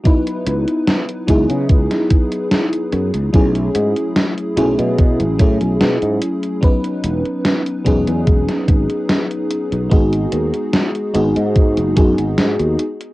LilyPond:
<<
  \new Staff \with { instrumentName = "FM electric piano" } { \time 4/4 \key gis \phrygian \tempo 4 = 73 <fis b dis' e' b'>4. <fis b dis' e' gis'>2~ <fis b dis' e' gis'>8 | <fis a cis' e' gis'>4. <fis a cis' e' gis'>4 <fis a cis' e' gis'>4. | <fis b cis' dis' b'>4. <fis b cis' dis' gis'>2~ <fis b cis' dis' gis'>8 | <gis b dis' fis' gis'>4. <gis b dis' fis' gis'>4 <gis b dis' fis' gis'>4 r8 | }
  \new Staff \with { instrumentName = "Fretless electric bass" } { \clef bass \time 4/4 \key gis \phrygian r8 cis,16 r8. cis,16 cis16 cis,16 r4 r16 fis,16 cis,16 | b,,8 gis,16 r8. b,,16 b,8 a,,16 a,16 b,,16 b,16 gis,16 r8 | r8 e,,16 r8. e,,16 e,16 e,,16 r16 gis,,16 r4 b,,16 | gis,,8 dis,16 r8. gis,,16 gis,8 fis,,16 fis,16 gis,,16 gis,16 dis,16 r8 | }
  \new DrumStaff \with { instrumentName = "Drums" } \drummode { \time 4/4 <hh bd>16 hh16 hh16 hh16 <hh sn>16 hh16 <hh bd>16 hh16 <hh bd>16 <hh sn>16 <hh bd>16 hh16 <hh sn>16 hh16 hh16 hh16 | <hh bd>16 hh16 hh16 hh16 <hh sn>16 hh16 hh16 hh16 <hh bd>16 hh16 <hh bd>16 hh16 <hh sn>16 hh16 hh16 hh16 | <hh bd>16 hh16 hh16 hh16 <hh sn>16 hh16 <hh bd>16 hh16 <hh bd>16 <hh sn>16 <hh bd>16 hh16 <hh sn>16 hh16 hh16 hh16 | <hh bd>16 hh16 hh16 hh16 <hh sn>16 hh16 hh16 hh16 <hh bd>16 hh16 <hh bd>16 hh16 <hh sn>16 hh16 hh16 hh16 | }
>>